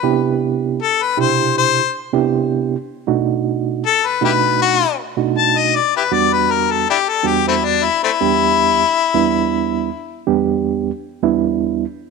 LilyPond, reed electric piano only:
\new Staff \with { instrumentName = "Reed electric piano" } { \time 4/4 \key e \minor \tempo 4 = 79 <c b d' e' g'>4 r8 <b, c d' e' g'>8. r8 <c b d' e' g'>8. r8 | <b, a d' dis' fis'>4 r8 <b, a d' dis' fis'>8. r8 <b, a d' dis' fis'>8. r8 | <e, g b d' fis'>4 r8 <e, g b d' fis'>8. r8 <e, g b d' g'>8. r8 | <e, g b d' e'>4 r8 <e, g b d' g'>8. r8 <e, g b d' e'>8. r8 | }